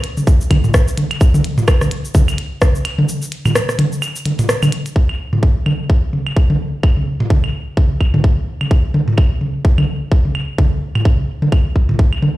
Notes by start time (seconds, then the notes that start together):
0.04 closed hi-hat
0.17 high tom, shaker
0.27 kick, shaker
0.41 shaker
0.51 kick, closed hi-hat, high tom, claves
0.64 mid tom, shaker
0.74 kick, cross-stick, shaker
0.88 shaker
0.97 closed hi-hat, high tom
1.11 closed hi-hat, claves
1.21 kick, shaker
1.34 high tom, shaker
1.44 closed hi-hat
1.58 mid tom, shaker
1.68 kick, cross-stick, claves, shaker
1.81 cross-stick, high tom, shaker
1.91 closed hi-hat
2.05 shaker
2.15 kick, high tom, shaker
2.28 claves, shaker
2.38 closed hi-hat
2.62 kick, cross-stick, high tom, shaker
2.75 shaker
2.85 closed hi-hat, claves
2.99 high tom
3.09 shaker
3.22 shaker
3.32 closed hi-hat
3.46 mid tom, high tom, claves, shaker
3.55 cross-stick, shaker
3.69 cross-stick, shaker
3.79 closed hi-hat, high tom
3.92 shaker
4.02 claves, shaker
4.16 shaker
4.26 closed hi-hat, high tom
4.39 closed hi-hat, mid tom, shaker
4.49 cross-stick, shaker
4.62 high tom, claves, shaker
4.72 closed hi-hat
4.86 closed hi-hat, shaker
4.96 kick
5.09 claves
5.33 mid tom, high tom
5.43 kick
5.66 high tom, claves
5.90 kick
6.13 high tom
6.27 claves
6.36 kick
6.50 high tom
6.83 kick, claves
6.97 high tom
7.20 mid tom
7.30 kick, high tom
7.44 claves
7.77 kick, high tom
8.01 kick, claves
8.14 mid tom, high tom
8.24 kick
8.61 high tom, claves
8.71 kick
8.94 high tom
9.08 mid tom
9.18 kick, claves
9.41 high tom
9.65 kick
9.78 high tom, claves
10.12 kick
10.25 high tom
10.35 claves
10.58 kick, high tom
10.95 mid tom, claves
11.05 kick, high tom
11.42 high tom
11.52 kick, claves
11.76 kick
11.89 mid tom, high tom
11.99 kick
12.13 claves
12.22 high tom